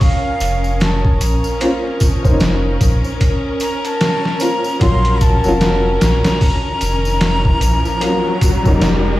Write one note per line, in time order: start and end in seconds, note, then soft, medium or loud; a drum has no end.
0.00 1.60 A#3 medium
0.00 1.61 C#4 medium
0.00 9.20 C#4 medium
0.00 1.62 F4 loud
0.00 9.20 A#4 medium
0.00 1.61 C5 medium
0.00 9.20 C#5 medium
0.00 0.82 F5 loud
0.00 kick loud
0.00 open hi-hat medium
0.00 tambourine soft
0.40 1.18 F1 medium
0.40 closed hi-hat medium
0.40 tambourine medium
0.64 tambourine soft
0.80 1.24 A5 medium
0.80 snare loud
0.80 closed hi-hat medium
0.80 tambourine soft
1.05 kick medium
1.21 1.42 A#1 medium
1.21 2.02 A#5 medium
1.21 closed hi-hat medium
1.21 tambourine medium
1.44 tambourine medium
1.60 2.18 A#3 medium
1.60 2.19 C#4 medium
1.60 2.20 F4 medium
1.60 2.19 C5 medium
1.60 closed hi-hat medium
1.60 tambourine soft
2.00 kick medium
2.00 closed hi-hat medium
2.00 tambourine medium
2.23 2.78 F1 medium
2.23 4.36 A#3 medium
2.23 4.37 C5 medium
2.23 kick medium
2.23 tambourine medium
2.27 4.38 C#4 medium
2.27 4.39 D#4 loud
2.40 snare loud
2.40 closed hi-hat medium
2.40 tambourine soft
2.81 3.02 A#1 loud
2.81 kick medium
2.81 closed hi-hat medium
2.81 tambourine medium
3.04 tambourine soft
3.21 kick loud
3.21 closed hi-hat medium
3.21 tambourine soft
3.60 3.87 A#5 loud
3.60 closed hi-hat medium
3.60 tambourine medium
3.85 4.43 A5 loud
3.85 closed hi-hat soft
3.85 tambourine soft
4.01 snare loud
4.01 closed hi-hat medium
4.01 tambourine soft
4.25 snare soft
4.40 4.76 A#3 medium
4.40 4.77 C#4 medium
4.40 4.78 F4 medium
4.40 4.77 C5 medium
4.40 4.80 A#5 loud
4.40 closed hi-hat medium
4.40 tambourine medium
4.64 tambourine medium
4.79 5.40 A#1 medium
4.79 5.38 F#3 medium
4.79 5.39 A#3 medium
4.79 5.39 C#4 medium
4.79 5.40 F4 loud
4.79 5.23 C6 loud
4.79 kick loud
4.79 closed hi-hat medium
4.79 tambourine soft
4.79 riser medium
5.05 closed hi-hat soft
5.21 6.03 A5 loud
5.21 kick medium
5.21 closed hi-hat medium
5.21 tambourine medium
5.42 5.98 F1 medium
5.42 7.96 F#3 loud
5.42 7.97 A#3 medium
5.42 7.98 C#4 medium
5.42 tambourine soft
5.48 7.99 F4 loud
5.61 snare loud
5.61 closed hi-hat medium
5.61 tambourine soft
6.01 6.22 A#1 loud
6.01 9.20 A#5 loud
6.01 snare loud
6.01 closed hi-hat medium
6.01 tambourine medium
6.24 snare loud
6.24 closed hi-hat medium
6.24 tambourine soft
6.41 kick loud
6.41 open hi-hat medium
6.41 tambourine soft
6.81 7.58 F1 medium
6.81 closed hi-hat medium
6.81 tambourine medium
7.05 tambourine soft
7.21 snare loud
7.21 closed hi-hat medium
7.21 tambourine soft
7.45 kick medium
7.61 7.82 A#1 medium
7.61 closed hi-hat medium
7.61 tambourine medium
7.85 tambourine soft
8.00 8.59 F#3 medium
8.00 8.59 A#3 medium
8.00 8.60 C#4 medium
8.00 8.60 F4 medium
8.00 closed hi-hat medium
8.00 tambourine soft
8.41 kick medium
8.41 closed hi-hat medium
8.41 tambourine medium
8.63 9.18 F1 medium
8.63 9.20 F#3 medium
8.63 9.20 A#3 medium
8.63 9.20 C#4 medium
8.63 kick medium
8.63 tambourine soft
8.68 9.20 D#4 loud
8.82 snare loud
8.82 closed hi-hat medium
8.82 tambourine soft